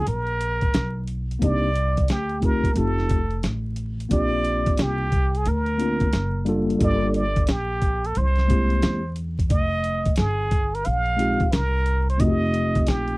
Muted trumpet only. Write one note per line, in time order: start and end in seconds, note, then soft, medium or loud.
0.08 1.05 A#4 medium
1.44 2.06 D5 loud
2.10 2.46 G4 medium
2.45 2.79 A#4 medium
2.78 3.44 A4 medium
4.13 4.84 D5 loud
4.82 5.39 G4 medium
5.37 5.50 G#4 medium
5.48 6.48 A#4 medium
6.83 7.14 D5 loud
7.16 7.52 D5 loud
7.51 8.08 G4 medium
8.06 8.19 A4 medium
8.18 9.18 C5 medium
9.51 10.14 D#5 loud
10.18 10.76 G#4 medium
10.75 10.87 A#4 medium
10.86 11.55 F5 loud
11.53 12.08 A#4 medium
12.10 12.22 C5 medium
12.20 12.90 D#5 loud
12.89 13.18 G4 medium